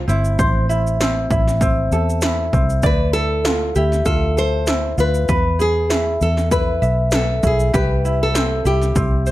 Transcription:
Already playing: G4 C5 E5
0.08 G1 C4 E4, shaker
0.25 shaker
0.39 A1 C5, kick, shaker
0.69 E4, shaker
0.87 shaker
1.01 C4, snare, shaker
1.31 A1 E4, kick, shaker
1.47 snare, shaker
1.61 C4, kick, shaker
1.91 E2 A4, shaker
2.10 shaker
2.21 E4, snare, shaker
2.53 C2 C4, kick, shaker
2.70 shaker
2.83 D2 B4 D5, kick, shaker
3.13 E4 A4, shaker
3.45 F4, snare, shaker
3.75 D2 E4 G4, shaker
3.92 snare, shaker
4.06 D2 F4 A4, kick, shaker
4.37 A4 C5, shaker
4.67 E4, snare, shaker
4.98 D2 F4 B4, shaker
5.14 shaker
5.29 E2 B4, kick, shaker
5.59 G#4, shaker
5.90 E4, snare, shaker
6.21 E2 A4, shaker
6.37 snare, shaker
6.51 E4 B4, kick, shaker
6.82 B1 E5, shaker
7.11 A4, snare, shaker
7.43 B1 E4 G#4, kick, shaker
7.60 shaker
7.73 C2 G4 B4, kick, shaker
8.05 E4, shaker
8.23 A4
8.34 C4, snare, shaker
8.65 C2 E4 G4, shaker
8.82 snare, shaker
8.96 C2 C4, kick, shaker
9.26 C5, shaker

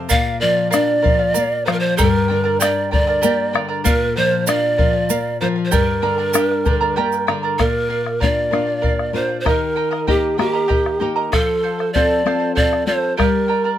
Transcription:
0.09 A#2 A#4 D5 F5, bombo low, shaker
0.40 F3 A#4 D5 F5
0.56 D5 F5
0.70 D4 A#4 D5 F5, bombo rim, shaker
1.02 F3 A#4 D5 F5, bombo low
1.19 D5 F5
1.34 A#3 A#4 D5 F5, shaker
1.65 F3 A#4 C5 D5 F5, bombo rim
1.73 A#4
1.80 C5 D5 F5
1.97 G2 G4 A4 A#4 D5 G5 A#5, bombo low, shaker
2.10 A#4
2.28 D3 A#4 D5 G5 A#5
2.44 A#4 D5 A#5
2.60 D4 G4 A#4 D5 G5 A#5, bombo rim, shaker
2.91 D3 A#4 D5 G5 A#5, bombo low
3.07 A#4 D5 A#5
3.22 A#3 G4 A#4 D5 G5 A#5, shaker
3.53 D3 A#4 D5 G5 A#5, bombo rim
3.69 A#4 D5 A#5
3.84 A#2 A#4 D5 F5, bombo low, shaker
4.16 F3 A#4 C5 D5 F5
4.31 D5 F5
4.47 D4 A#4 D5 F5, bombo rim, shaker
4.78 F3 A#4 D5 F5, bombo low
4.93 D5 F5
5.10 A#3 A#4 D5 F5, shaker
5.41 F3 A#4 C5 D5 F5
5.56 D5 F5
5.65 C5
5.71 G2 G4 A#4 D5 G5 A#5, bombo low, shaker
6.02 D3 A#4 D5 G5 A#5
6.18 A#4 D5 A#5
6.33 D4 G4 A#4 D5 G5 A#5, bombo rim, shaker
6.51 bombo rim
6.65 D3 A#4 D5 G5 A#5, bombo low, shaker
6.81 A#4 D5 A#5
6.96 A#3 G4 A#4 D5 G5 A#5
7.12 bombo rim, shaker
7.27 D3 A#4 D5 G5 A#5, bombo rim
7.43 A#4 D5 A#5
7.58 A#2 A#4 D5 F5, bombo rim, bombo low
7.89 A#4 D5 F5
8.04 D5 F5, bombo rim
8.20 A#3 D4 F4 A#4 D5 F5, bombo low
8.51 A#3 D4 F4 A#4 D5 F5, bombo rim
8.67 D5 F5
8.82 A#4 D5 F5, bombo rim, bombo low
8.99 bombo rim
9.13 A#3 D4 F4 A#4 C5 D5 F5
9.29 D5 F5
9.40 G4 C5
9.45 D#3 A#4 D#5 G5 A#5, bombo rim, bombo low
9.76 A#4 D#5 G5 A#5
9.91 A#4 D#5 A#5, bombo rim
10.07 A#3 D#4 G4 A#4 D#5 G5 A#5, bombo low
10.38 A#3 D#4 G4 A#4 D#5 G5 A#5, bombo rim
10.53 A#4 D#5 A#5
10.68 G4 A#4 D#5 G5 A#5, bombo rim, bombo low
10.86 bombo rim
11.00 A#3 D#4 G4 A#4 D#5 G5 A#5
11.16 A#4 D#5 A#5
11.32 F3 A4 C5 F5, bombo rim, bombo low
11.63 A4 C5 F5
11.79 C5 F5, bombo rim
11.93 C4 F4 A4 C5 D5 F5, bombo low
12.26 C4 F4 A4 C5 F5, bombo rim
12.40 C5 F5
12.55 A4 C5 D5 F5, bombo rim, bombo low
12.73 bombo rim
12.87 C4 F4 A4 C5 F5
13.03 C5 F5
13.17 G3 G4 A#4 D5 G5 A#5, bombo rim, bombo low
13.48 A#4 D5 G5 A#5
13.64 A#4 D5 A#5

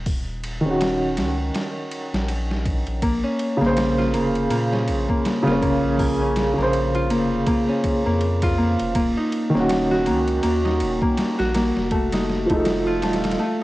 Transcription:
Already playing: D#1
0.06 kick, open hi-hat
0.43 ride
0.61 D#1 D#3
0.65 C#4
0.70 F#4
0.81 snare, ride
1.17 C#2, snare, ride
1.54 snare, ride
1.91 ride
2.14 A#1, snare
2.28 ride
2.51 snare
2.65 kick, ride
2.87 A#1, ride
3.02 A#1 A#3, kick, ride
3.24 C#4
3.39 ride
3.57 C#3
3.61 A#1 A#3, snare
3.66 C5
3.77 snare, ride
3.98 F4, snare
4.14 F1 A#3, ride
4.35 ride
4.50 A#2 A#3, ride
4.72 C#4, snare
4.88 A#1, ride
5.09 A#3, kick
5.25 snare, ride
5.43 C#3 F4
5.47 F1 A#3, snare
5.52 C#4
5.62 A#3, kick, ride
5.84 A#1
5.99 A#3, kick, open hi-hat
6.21 C#4
6.36 snare, ride
6.54 C#3
6.58 A#1 A#3, snare
6.62 C5
6.73 ride
6.95 F4, ride
7.10 F1 A#3, ride
7.47 A#3, kick, ride
7.69 C#4
7.84 kick, ride
8.06 F2 A#3
8.21 ride
8.42 F4, kick, ride
8.58 A#3
8.80 F1, ride
8.95 D#1 A#3, kick, ride
9.17 D#4
9.32 ride
9.50 D#3
9.54 D#1 A#3 C#4, snare
9.59 F#4
9.69 snare, ride
9.91 F#4, snare
10.06 C#2 A#3, ride
10.28 ride
10.43 D#2 A#3, ride
10.65 D#4, snare
10.80 D#1, ride
11.02 A#3, kick
11.17 snare, ride
11.38 A#1 F#4, snare
11.54 A#3, snare, ride
11.77 F1, snare
11.91 A3, kick, ride
12.12 D#4, snare, ride
12.29 snare
12.46 F3 A3, kick, ride
12.50 F1 D#4
12.55 A4
12.65 snare, ride
12.87 F4
13.02 D#1 A3, snare, ride
13.13 snare, ride
13.24 snare, ride
13.31 snare, ride
13.39 A3

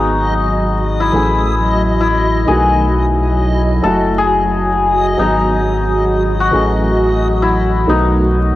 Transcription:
Already playing: G#1 F#3 B3 D#4 F#4 G#4 D#5
1.00 E4
1.12 A1 E3 A3 C#4 G#4
2.01 E4
2.47 B1 D#3 A3 B3 G#4
2.51 F#4
3.82 F#1 F#3 A3 E4 A4
3.86 F#4
4.18 G#4
5.17 G#1 F#3 B3 D#4 G#4
6.40 F#4
6.51 A1 E3 A3 C#4
6.55 G#4
7.42 E4
7.87 B1 D#3 A3 B3 D#4 F#4

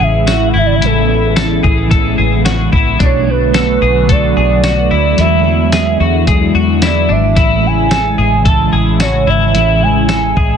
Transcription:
Already playing: C#3 E3 G#3 C#4 E4
0.00 A1 G#4 E5
0.27 F#4, snare, closed hi-hat, tambourine
0.48 F#5
0.54 G#1 E4 E5
0.66 D5
0.75 E5
0.81 A1 A2 E3 G#3 B3 C#4 E4 A4, closed hi-hat
0.86 E4
1.08 C#4 E4
1.13 G#3
1.36 A4, snare, closed hi-hat, tambourine
1.63 A1 G#4, kick
1.87 E3 A4
1.91 G#3, kick, closed hi-hat
1.96 C#4 E4
2.18 A1 G#4
2.45 F#4, snare, closed hi-hat, tambourine
2.72 A1 E4, kick
2.99 B1 B2 D3 F#3 A3 D4 F#4, kick, closed hi-hat
3.04 C#5
3.27 D4 F#4 B4
3.32 A3
3.54 A4, snare, closed hi-hat, tambourine
3.82 B1 G#4
4.05 F#3 A4, kick, closed hi-hat
4.10 A3 D4 D5
4.18 F#4
4.37 B1 G#4
4.64 F#4, snare, closed hi-hat, tambourine
4.91 D2 E4
5.17 E2 D3 E3 G#3 D4 E4 F#4 E5, closed hi-hat
5.44 D4 F#4
5.50 G#3
5.72 G#4, snare, closed hi-hat, tambourine
6.00 E2 F#4
6.23 E3
6.27 G#3 G#4, kick, closed hi-hat
6.32 D4 F#4
6.54 E2 F#4
6.82 E4 D5, snare, closed hi-hat, tambourine
7.09 G#1 D4 E5
7.35 A1 A2 C#3 E3 G#3 C#4 E4 E5, kick, closed hi-hat
7.40 E4
7.63 C#4 E4 G#5
7.68 G#3
7.91 A4, snare, closed hi-hat, tambourine
8.18 A1 G#4
8.42 E3 A4, kick, closed hi-hat
8.47 G#3 A5
8.51 C#4 E4
8.73 A1 G#4
9.00 F#4 C#5, snare, closed hi-hat, tambourine
9.27 G#1 E4 E5
9.53 A1 A2 E3 G#3 C#4 E4 E5, closed hi-hat
9.80 C#4 E4 G#5
9.86 G#3
10.09 A4, snare, closed hi-hat, tambourine
10.37 A1 G#4, kick

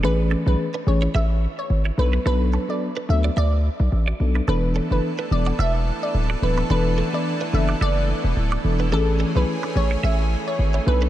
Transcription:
0.03 A1 E3 A3 C#4 G#4 A4 B4
0.31 C#4 A4
0.46 B1 E3 A3 C#4 G#4 B4
0.74 D4 B4
0.86 A1 E3 A3 C#4 G#4 C#5
1.02 E4 C#5
1.14 A1 G#4 E5
1.59 C#5
1.70 G#1
1.85 E4 C#5
1.97 B1 F#3 B3 D4 A4 B4
2.13 D4 B4
2.25 B1 F#3 B3 D4 A4 B4
2.53 C#4 A4
2.68 F#3 B3 D4 A4 D5
2.97 D4 B4
3.09 D2 F#3 B3 D4 A4 E5
3.24 F#4 D5
3.37 D2 A4 D5 E5
3.80 B1
3.92 A1
4.08 F#4 D5
4.20 B1 F#3 B3 D4 A4
4.35 D4 B4
4.48 E1 E3 A3 B3 D4 A4 B4
4.76 C#4 A4
4.90 F#1 E3 B3 D4 A4 B4
5.19 D4 B4
5.31 E1 E3 B3 D4 A4 D5
5.46 F#4 D5
5.59 E1 A4 E5
6.03 D5
6.14 D1
6.30 F#4 D5
6.42 D1 E3 B3 D4 A4 B4
6.58 D4 B4
6.70 E1 E3 B3 D4 A4 B4
6.98 C#4 A4
7.13 E3 B3 D4 A4 D5
7.41 D4 B4
7.53 F#1 E3 B3 D4 A4 E5
7.69 F#4 D5
7.81 F#1 A4 D5 E5
8.24 E1
8.37 D1
8.52 F#4 D5
8.64 E1 E3 B3 D4 A4
8.80 D4 B4
8.92 A1 E3 A3 C#4 G#4 A4
9.20 C#4 A4
9.35 B1 E3 A3 C#4 G#4 B4
9.63 D4 B4
9.75 A1 E3 A3 C#4 G#4 C#5
9.91 E4 C#5
10.03 A1 G#4 E5
10.48 C#5
10.59 G#1
10.74 E4 C#5
10.86 B1 F#3 B3 D4 A4 B4
11.02 D4 B4

